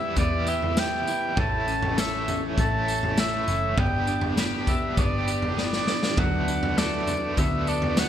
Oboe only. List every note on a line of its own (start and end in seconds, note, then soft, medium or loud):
0.00 0.18 E5 loud
0.19 0.50 D5 loud
0.49 0.81 E5 medium
0.79 1.41 G5 loud
1.40 2.01 A5 loud
2.00 2.43 E5 loud
2.60 3.21 A5 loud
3.20 3.81 E5 loud
3.79 4.41 G5 loud
4.68 4.95 E5 medium
4.98 5.53 D5 medium
5.59 6.21 D5 medium
6.19 6.80 F#5 loud
6.78 7.40 D5 medium
7.39 7.70 E5 medium
7.69 8.01 D5 medium
7.99 8.09 F#5 loud